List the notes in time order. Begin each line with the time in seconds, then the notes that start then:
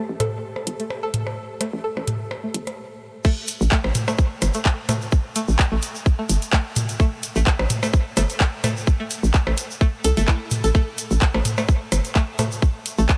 Already playing: G4 C5 A5
0.09 A1
0.20 A4, closed hi-hat, mid tom, percussion blips
0.56 percussion blips
0.67 G1, closed hi-hat
0.80 A3, closed hi-hat
0.90 percussion blips
1.03 A4
1.14 closed hi-hat, mid tom
1.27 percussion blips
1.61 A3, closed hi-hat, percussion blips
1.73 A1
1.84 A4
1.97 A1, percussion blips
2.07 closed hi-hat, mid tom
2.31 percussion blips
2.44 A3
2.54 G1, closed hi-hat
2.67 closed hi-hat, percussion blips
3.24 A3, kick, crash, shaker
3.47 closed hi-hat, shaker
3.61 A1, shaker
3.72 A3, kick, clap, shaker
3.84 A1, percussion blips
3.95 closed hi-hat, mid tom, shaker
4.08 A3, percussion blips, shaker
4.18 kick, shaker
4.42 G1, closed hi-hat, percussion blips, shaker
4.54 A3, closed hi-hat, shaker
4.65 kick, clap, shaker
4.89 A3, closed hi-hat, mid tom, percussion blips, shaker
5.02 shaker
5.12 kick, shaker
5.36 A3, closed hi-hat, shaker
5.48 A1, shaker
5.59 kick, clap, shaker
5.72 A1 A3
5.82 closed hi-hat, shaker
5.95 shaker
6.06 kick, shaker
6.19 A3
6.29 G1, closed hi-hat, shaker
6.42 closed hi-hat, shaker
6.53 A3, kick, clap, shaker
6.76 closed hi-hat, mid tom, shaker
6.89 closed hi-hat, shaker
7.00 A3, kick, shaker
7.23 closed hi-hat, shaker
7.36 A1 A3, shaker
7.46 kick, clap, shaker
7.59 A1, percussion blips
7.70 closed hi-hat, mid tom, shaker
7.83 A3, percussion blips, shaker
7.93 kick, shaker
8.17 G1 A3, closed hi-hat, percussion blips, shaker
8.30 closed hi-hat, shaker
8.40 kick, clap, shaker
8.64 A3, closed hi-hat, mid tom, percussion blips, shaker
8.77 shaker
8.87 kick, shaker
9.00 A3
9.10 closed hi-hat, shaker
9.23 A1, shaker
9.34 kick, clap, shaker
9.47 A1 A3, percussion blips
9.58 closed hi-hat, shaker
9.71 shaker
9.81 A3, kick, shaker
10.04 C2 A4, closed hi-hat, shaker
10.17 G1 A3, closed hi-hat, shaker
10.28 E4, kick, clap, shaker
10.51 closed hi-hat, mid tom, shaker
10.64 A1 A4, closed hi-hat, shaker
10.75 A3, kick, shaker
10.98 closed hi-hat, shaker
11.11 A1, shaker
11.21 kick, clap, shaker
11.34 A1 A3, percussion blips
11.45 closed hi-hat, mid tom, shaker
11.58 A3, percussion blips, shaker
11.68 kick, shaker
11.92 G1, closed hi-hat, percussion blips, shaker
12.05 closed hi-hat, shaker
12.15 A3, kick, clap, shaker
12.39 A3, closed hi-hat, mid tom, percussion blips, shaker
12.52 shaker
12.62 kick, shaker
12.86 closed hi-hat, shaker
12.98 A1 A3, shaker
13.09 kick, clap, shaker